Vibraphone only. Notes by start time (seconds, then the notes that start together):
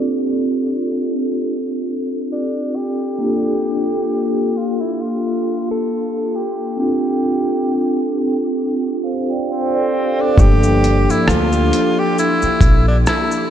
Already playing: C4 D4 F4 G4 A4
3.18 A#3 D4 F4
3.24 G4 A4
6.77 C4 D4 F4
6.82 G4 A4
9.04 C5 F5
9.29 D5 G5
9.49 C5 F5
9.74 A4 D5
9.94 G4 C5
10.19 D4 A4
10.35 F3 A#3 D4
10.41 G4 A4